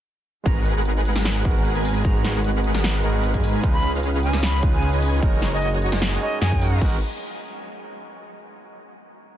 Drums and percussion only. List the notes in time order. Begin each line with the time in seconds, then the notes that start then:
0.46 kick, closed hi-hat
0.66 closed hi-hat
0.85 closed hi-hat
1.05 closed hi-hat
1.16 snare
1.25 snare, closed hi-hat
1.45 kick, closed hi-hat
1.65 closed hi-hat
1.75 closed hi-hat
1.85 open hi-hat
2.05 kick, closed hi-hat
2.24 snare, closed hi-hat
2.44 closed hi-hat
2.64 closed hi-hat
2.75 snare
2.84 snare, closed hi-hat
3.04 closed hi-hat
3.24 closed hi-hat
3.34 kick, closed hi-hat
3.44 open hi-hat
3.63 kick, closed hi-hat
3.83 closed hi-hat
4.03 closed hi-hat
4.23 closed hi-hat
4.33 snare
4.43 snare, closed hi-hat
4.63 kick, closed hi-hat
4.83 closed hi-hat
4.93 closed hi-hat
5.02 open hi-hat
5.22 kick, closed hi-hat
5.42 snare, closed hi-hat
5.62 closed hi-hat
5.82 closed hi-hat
5.92 snare
6.02 snare, closed hi-hat
6.22 closed hi-hat
6.42 snare, closed hi-hat
6.52 kick, closed hi-hat
6.61 open hi-hat
6.81 kick, crash